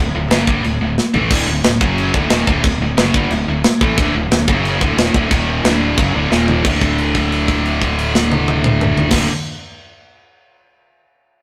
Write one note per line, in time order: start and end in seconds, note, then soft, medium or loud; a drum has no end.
0.00 0.13 D1 medium
0.00 0.11 D2 medium
0.00 0.11 A2 medium
0.14 0.30 D1 medium
0.14 0.28 D2 medium
0.14 0.28 A2 medium
0.30 0.47 F#1 loud
0.30 0.45 F#2 medium
0.30 0.46 C#3 loud
0.30 0.47 F#3 loud
0.30 snare loud
0.30 china medium
0.46 0.63 G1 loud
0.46 0.63 G2 loud
0.46 0.63 D3 loud
0.46 0.64 G3 loud
0.46 kick loud
0.64 0.80 D1 medium
0.64 0.77 D2 medium
0.64 0.78 A2 medium
0.64 china medium
0.81 0.97 D1 medium
0.81 0.94 D2 medium
0.81 0.94 A2 medium
0.98 snare medium
1.14 1.30 A1 medium
1.14 1.30 A2 medium
1.14 1.30 E3 medium
1.14 1.31 A3 loud
1.14 floor tom loud
1.30 1.46 D1 medium
1.30 1.46 D2 medium
1.30 1.46 A2 medium
1.30 1.48 D3 loud
1.30 kick loud
1.30 crash loud
1.30 china medium
1.47 1.63 D1 medium
1.47 1.61 D2 medium
1.47 1.61 A2 medium
1.64 1.80 D1 medium
1.64 1.78 D2 medium
1.64 1.77 A2 medium
1.64 snare loud
1.64 china medium
1.80 2.12 F#1 loud
1.80 2.13 F#2 medium
1.80 2.14 C#3 loud
1.80 2.14 F#3 loud
1.80 kick loud
1.98 china medium
2.14 2.30 D1 loud
2.14 2.30 D2 loud
2.14 2.30 A2 loud
2.14 2.31 D3 loud
2.14 kick loud
2.30 2.46 D#1 loud
2.30 2.46 D#2 medium
2.30 2.47 A#2 medium
2.30 2.47 D#3 loud
2.30 snare loud
2.30 china medium
2.46 2.63 D1 loud
2.46 2.63 D2 medium
2.46 2.63 A2 loud
2.46 2.64 D3 loud
2.46 kick loud
2.63 2.80 D1 medium
2.63 2.78 D2 medium
2.63 2.78 A2 medium
2.63 kick loud
2.63 china medium
2.80 2.96 D1 medium
2.80 2.95 D2 medium
2.80 2.95 A2 medium
2.97 3.13 F#1 loud
2.97 3.13 F#2 medium
2.97 3.14 C#3 loud
2.97 3.14 F#3 loud
2.97 snare loud
2.97 china medium
3.14 3.30 G1 loud
3.14 3.30 G2 loud
3.14 3.31 D3 loud
3.14 3.31 G3 loud
3.14 kick loud
3.30 3.46 D1 medium
3.30 3.45 D2 medium
3.30 3.45 A2 medium
3.30 china medium
3.48 3.63 D1 medium
3.48 3.61 D2 medium
3.48 3.62 A2 medium
3.64 snare loud
3.64 china medium
3.81 3.97 A1 loud
3.81 3.97 A2 medium
3.81 3.98 E3 loud
3.81 3.98 A3 loud
3.81 kick loud
3.97 4.13 D1 loud
3.97 4.13 D2 loud
3.97 4.14 A2 loud
3.97 4.15 D3 loud
3.97 kick loud
3.97 china medium
4.14 4.30 D1 medium
4.14 4.28 D2 medium
4.14 4.28 A2 medium
4.31 4.47 D1 medium
4.31 4.48 D2 medium
4.31 4.45 A2 medium
4.31 snare loud
4.31 china medium
4.48 4.79 F#1 loud
4.48 4.80 F#2 loud
4.48 4.81 C#3 loud
4.48 4.81 F#3 loud
4.48 kick loud
4.65 china medium
4.80 4.97 D1 loud
4.80 4.97 D2 loud
4.80 4.97 A2 loud
4.80 4.98 D3 loud
4.80 kick loud
4.97 5.13 D#1 loud
4.97 5.14 D#2 loud
4.97 5.14 A#2 loud
4.97 5.14 D#3 loud
4.97 snare loud
4.97 china medium
5.14 5.30 D1 medium
5.14 5.30 D2 medium
5.14 5.31 A2 medium
5.14 5.31 D3 loud
5.14 kick loud
5.31 5.62 D#1 loud
5.31 5.64 D#2 loud
5.31 5.64 A#2 loud
5.31 5.65 D#3 loud
5.31 kick loud
5.31 china medium
5.64 5.95 D1 loud
5.64 5.97 D2 medium
5.64 5.98 A2 loud
5.64 5.98 D3 loud
5.64 snare loud
5.64 china medium
5.97 6.13 F#1 medium
5.97 6.12 F#2 loud
5.97 6.13 C#3 loud
5.97 6.14 F#3 loud
5.97 kick loud
5.97 china medium
6.13 6.30 D1 loud
6.13 6.29 D2 loud
6.13 6.30 A2 medium
6.13 6.31 D3 loud
6.30 6.62 D#1 loud
6.30 6.63 D#2 loud
6.30 6.64 A#2 loud
6.30 6.64 D#3 loud
6.30 snare medium
6.48 floor tom loud
6.64 9.04 D1 medium
6.64 9.09 D2 medium
6.64 9.11 A2 loud
6.64 kick loud
6.64 crash loud
6.68 9.13 D3 loud
6.81 kick medium
6.81 crash soft
6.98 crash soft
7.15 kick medium
7.15 crash medium
7.32 crash medium
7.48 kick medium
7.48 crash medium
7.65 crash soft
7.81 kick medium
7.81 crash soft
7.98 crash medium
8.15 snare loud
8.32 high tom loud
8.48 high tom loud
8.64 mid tom loud
8.81 mid tom loud
8.97 floor tom loud
9.10 9.25 D1 loud
9.10 9.26 D2 loud
9.10 9.27 A2 loud
9.10 kick loud
9.10 snare loud
9.10 crash loud
9.14 9.28 D3 loud